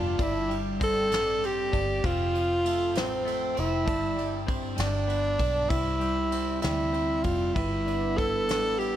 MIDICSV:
0, 0, Header, 1, 6, 480
1, 0, Start_track
1, 0, Tempo, 614754
1, 150, Time_signature, 6, 3, 24, 8
1, 6998, End_track
2, 0, Start_track
2, 0, Title_t, "Tenor saxophone"
2, 0, Program_c, 0, 66
2, 0, Note_on_c, 0, 65, 79
2, 178, Note_on_c, 0, 64, 84
2, 189, Note_off_c, 0, 65, 0
2, 435, Note_off_c, 0, 64, 0
2, 653, Note_on_c, 0, 69, 99
2, 1139, Note_on_c, 0, 67, 93
2, 1151, Note_off_c, 0, 69, 0
2, 1609, Note_on_c, 0, 65, 97
2, 1621, Note_off_c, 0, 67, 0
2, 2329, Note_on_c, 0, 60, 79
2, 2341, Note_off_c, 0, 65, 0
2, 2807, Note_on_c, 0, 64, 80
2, 2818, Note_off_c, 0, 60, 0
2, 3513, Note_off_c, 0, 64, 0
2, 3744, Note_on_c, 0, 62, 80
2, 4445, Note_on_c, 0, 64, 89
2, 4457, Note_off_c, 0, 62, 0
2, 5163, Note_off_c, 0, 64, 0
2, 5168, Note_on_c, 0, 64, 84
2, 5651, Note_on_c, 0, 65, 84
2, 5663, Note_off_c, 0, 64, 0
2, 5894, Note_on_c, 0, 64, 86
2, 5906, Note_off_c, 0, 65, 0
2, 6382, Note_on_c, 0, 69, 104
2, 6393, Note_off_c, 0, 64, 0
2, 6861, Note_on_c, 0, 67, 89
2, 6872, Note_off_c, 0, 69, 0
2, 6998, Note_off_c, 0, 67, 0
2, 6998, End_track
3, 0, Start_track
3, 0, Title_t, "Clean electric guitar"
3, 0, Program_c, 1, 27
3, 0, Note_on_c, 1, 43, 76
3, 0, Note_on_c, 1, 55, 77
3, 0, Note_on_c, 1, 59, 54
3, 0, Note_on_c, 1, 62, 58
3, 132, Note_off_c, 1, 43, 0
3, 137, Note_off_c, 1, 62, 0
3, 141, Note_on_c, 1, 43, 72
3, 147, Note_on_c, 1, 62, 60
3, 192, Note_off_c, 1, 59, 0
3, 383, Note_off_c, 1, 55, 0
3, 383, Note_on_c, 1, 55, 59
3, 622, Note_on_c, 1, 60, 53
3, 862, Note_off_c, 1, 55, 0
3, 871, Note_on_c, 1, 55, 60
3, 1116, Note_off_c, 1, 60, 0
3, 1119, Note_on_c, 1, 60, 57
3, 1333, Note_off_c, 1, 62, 0
3, 1342, Note_on_c, 1, 62, 60
3, 1584, Note_off_c, 1, 43, 0
3, 1587, Note_on_c, 1, 41, 70
3, 1588, Note_off_c, 1, 62, 0
3, 1596, Note_off_c, 1, 60, 0
3, 1596, Note_on_c, 1, 60, 65
3, 1640, Note_off_c, 1, 55, 0
3, 1827, Note_on_c, 1, 53, 55
3, 2067, Note_on_c, 1, 57, 55
3, 2284, Note_off_c, 1, 53, 0
3, 2293, Note_on_c, 1, 53, 61
3, 2529, Note_off_c, 1, 57, 0
3, 2539, Note_on_c, 1, 57, 59
3, 2762, Note_off_c, 1, 60, 0
3, 2771, Note_on_c, 1, 60, 64
3, 3002, Note_off_c, 1, 41, 0
3, 3005, Note_on_c, 1, 43, 78
3, 3009, Note_off_c, 1, 60, 0
3, 3012, Note_on_c, 1, 62, 62
3, 3067, Note_off_c, 1, 53, 0
3, 3070, Note_off_c, 1, 57, 0
3, 3247, Note_on_c, 1, 55, 61
3, 3489, Note_on_c, 1, 60, 60
3, 3707, Note_off_c, 1, 43, 0
3, 3716, Note_on_c, 1, 43, 82
3, 3781, Note_off_c, 1, 62, 0
3, 3782, Note_off_c, 1, 60, 0
3, 3962, Note_on_c, 1, 59, 56
3, 4205, Note_on_c, 1, 62, 61
3, 4437, Note_on_c, 1, 48, 70
3, 4439, Note_off_c, 1, 62, 0
3, 4442, Note_on_c, 1, 64, 51
3, 4493, Note_off_c, 1, 43, 0
3, 4497, Note_off_c, 1, 59, 0
3, 4677, Note_off_c, 1, 55, 0
3, 4680, Note_on_c, 1, 55, 57
3, 4932, Note_on_c, 1, 60, 55
3, 5170, Note_off_c, 1, 55, 0
3, 5173, Note_on_c, 1, 55, 59
3, 5401, Note_off_c, 1, 60, 0
3, 5410, Note_on_c, 1, 60, 54
3, 5889, Note_off_c, 1, 55, 0
3, 5895, Note_off_c, 1, 48, 0
3, 5898, Note_on_c, 1, 55, 69
3, 5900, Note_off_c, 1, 64, 0
3, 5903, Note_on_c, 1, 71, 63
3, 5948, Note_off_c, 1, 60, 0
3, 6139, Note_on_c, 1, 62, 55
3, 6379, Note_on_c, 1, 64, 56
3, 6612, Note_off_c, 1, 62, 0
3, 6622, Note_on_c, 1, 62, 60
3, 6862, Note_off_c, 1, 64, 0
3, 6865, Note_on_c, 1, 64, 58
3, 6998, Note_off_c, 1, 55, 0
3, 6998, Note_off_c, 1, 62, 0
3, 6998, Note_off_c, 1, 64, 0
3, 6998, Note_off_c, 1, 71, 0
3, 6998, End_track
4, 0, Start_track
4, 0, Title_t, "French horn section"
4, 0, Program_c, 2, 60
4, 5905, Note_on_c, 2, 59, 79
4, 6998, Note_off_c, 2, 59, 0
4, 6998, End_track
5, 0, Start_track
5, 0, Title_t, "Fingered electric bass"
5, 0, Program_c, 3, 33
5, 0, Note_on_c, 3, 29, 72
5, 135, Note_off_c, 3, 29, 0
5, 150, Note_on_c, 3, 31, 91
5, 875, Note_off_c, 3, 31, 0
5, 875, Note_on_c, 3, 33, 91
5, 1326, Note_off_c, 3, 33, 0
5, 1354, Note_on_c, 3, 31, 85
5, 1579, Note_off_c, 3, 31, 0
5, 1595, Note_on_c, 3, 29, 100
5, 2312, Note_off_c, 3, 29, 0
5, 2312, Note_on_c, 3, 33, 88
5, 2762, Note_off_c, 3, 33, 0
5, 2800, Note_on_c, 3, 29, 80
5, 3027, Note_off_c, 3, 29, 0
5, 3027, Note_on_c, 3, 31, 99
5, 3710, Note_off_c, 3, 31, 0
5, 3739, Note_on_c, 3, 31, 97
5, 4188, Note_off_c, 3, 31, 0
5, 4215, Note_on_c, 3, 35, 85
5, 4442, Note_off_c, 3, 35, 0
5, 4457, Note_on_c, 3, 36, 91
5, 5148, Note_off_c, 3, 36, 0
5, 5187, Note_on_c, 3, 38, 74
5, 5638, Note_off_c, 3, 38, 0
5, 5661, Note_on_c, 3, 29, 78
5, 5889, Note_off_c, 3, 29, 0
5, 5902, Note_on_c, 3, 31, 101
5, 6628, Note_off_c, 3, 31, 0
5, 6628, Note_on_c, 3, 33, 78
5, 6998, Note_off_c, 3, 33, 0
5, 6998, End_track
6, 0, Start_track
6, 0, Title_t, "Drums"
6, 148, Note_on_c, 9, 51, 57
6, 149, Note_on_c, 9, 36, 102
6, 226, Note_off_c, 9, 51, 0
6, 227, Note_off_c, 9, 36, 0
6, 396, Note_on_c, 9, 51, 39
6, 474, Note_off_c, 9, 51, 0
6, 633, Note_on_c, 9, 36, 96
6, 637, Note_on_c, 9, 51, 55
6, 711, Note_off_c, 9, 36, 0
6, 715, Note_off_c, 9, 51, 0
6, 872, Note_on_c, 9, 51, 64
6, 889, Note_on_c, 9, 38, 94
6, 950, Note_off_c, 9, 51, 0
6, 967, Note_off_c, 9, 38, 0
6, 1121, Note_on_c, 9, 51, 38
6, 1199, Note_off_c, 9, 51, 0
6, 1353, Note_on_c, 9, 36, 77
6, 1353, Note_on_c, 9, 51, 51
6, 1431, Note_off_c, 9, 36, 0
6, 1431, Note_off_c, 9, 51, 0
6, 1593, Note_on_c, 9, 36, 104
6, 1598, Note_on_c, 9, 51, 59
6, 1671, Note_off_c, 9, 36, 0
6, 1676, Note_off_c, 9, 51, 0
6, 1836, Note_on_c, 9, 51, 39
6, 1914, Note_off_c, 9, 51, 0
6, 2073, Note_on_c, 9, 51, 53
6, 2151, Note_off_c, 9, 51, 0
6, 2305, Note_on_c, 9, 51, 63
6, 2322, Note_on_c, 9, 38, 97
6, 2383, Note_off_c, 9, 51, 0
6, 2400, Note_off_c, 9, 38, 0
6, 2554, Note_on_c, 9, 51, 40
6, 2633, Note_off_c, 9, 51, 0
6, 2786, Note_on_c, 9, 51, 50
6, 2864, Note_off_c, 9, 51, 0
6, 3026, Note_on_c, 9, 36, 105
6, 3028, Note_on_c, 9, 51, 59
6, 3105, Note_off_c, 9, 36, 0
6, 3106, Note_off_c, 9, 51, 0
6, 3267, Note_on_c, 9, 51, 38
6, 3345, Note_off_c, 9, 51, 0
6, 3498, Note_on_c, 9, 51, 53
6, 3501, Note_on_c, 9, 36, 92
6, 3576, Note_off_c, 9, 51, 0
6, 3579, Note_off_c, 9, 36, 0
6, 3728, Note_on_c, 9, 51, 63
6, 3746, Note_on_c, 9, 38, 100
6, 3807, Note_off_c, 9, 51, 0
6, 3824, Note_off_c, 9, 38, 0
6, 3977, Note_on_c, 9, 51, 41
6, 4055, Note_off_c, 9, 51, 0
6, 4208, Note_on_c, 9, 51, 55
6, 4213, Note_on_c, 9, 36, 76
6, 4286, Note_off_c, 9, 51, 0
6, 4291, Note_off_c, 9, 36, 0
6, 4454, Note_on_c, 9, 36, 105
6, 4454, Note_on_c, 9, 51, 59
6, 4532, Note_off_c, 9, 36, 0
6, 4532, Note_off_c, 9, 51, 0
6, 4691, Note_on_c, 9, 51, 38
6, 4769, Note_off_c, 9, 51, 0
6, 4933, Note_on_c, 9, 51, 57
6, 5011, Note_off_c, 9, 51, 0
6, 5169, Note_on_c, 9, 51, 68
6, 5186, Note_on_c, 9, 38, 97
6, 5247, Note_off_c, 9, 51, 0
6, 5264, Note_off_c, 9, 38, 0
6, 5417, Note_on_c, 9, 51, 40
6, 5495, Note_off_c, 9, 51, 0
6, 5651, Note_on_c, 9, 51, 50
6, 5658, Note_on_c, 9, 36, 76
6, 5730, Note_off_c, 9, 51, 0
6, 5736, Note_off_c, 9, 36, 0
6, 5902, Note_on_c, 9, 51, 57
6, 5903, Note_on_c, 9, 36, 109
6, 5980, Note_off_c, 9, 51, 0
6, 5981, Note_off_c, 9, 36, 0
6, 6148, Note_on_c, 9, 51, 38
6, 6226, Note_off_c, 9, 51, 0
6, 6390, Note_on_c, 9, 36, 92
6, 6392, Note_on_c, 9, 51, 57
6, 6468, Note_off_c, 9, 36, 0
6, 6470, Note_off_c, 9, 51, 0
6, 6625, Note_on_c, 9, 51, 64
6, 6643, Note_on_c, 9, 38, 105
6, 6703, Note_off_c, 9, 51, 0
6, 6721, Note_off_c, 9, 38, 0
6, 6872, Note_on_c, 9, 51, 39
6, 6950, Note_off_c, 9, 51, 0
6, 6998, End_track
0, 0, End_of_file